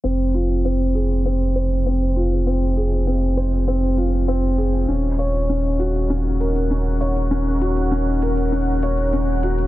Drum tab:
HH |x-xxx-xxx-xxx-xx|x-xxx-xxx-xxx-xx|x-xxx-xxx-xxx-xx|x-xxx-xxx-xxx-xx|